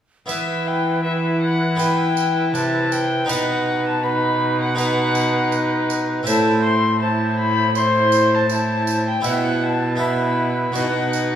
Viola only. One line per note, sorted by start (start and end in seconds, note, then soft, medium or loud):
0.30 1.01 E4 medium
1.05 1.78 E4 medium
1.81 3.27 E4 medium
3.28 4.01 D#4 medium
4.04 4.77 D#4 medium
4.78 6.24 D#4 medium
6.27 7.00 E4 medium
7.02 7.74 E4 medium
7.76 8.48 E4 medium
8.50 9.23 E4 medium
9.24 9.98 E4 medium
9.99 10.78 E4 medium
10.76 11.36 D#4 medium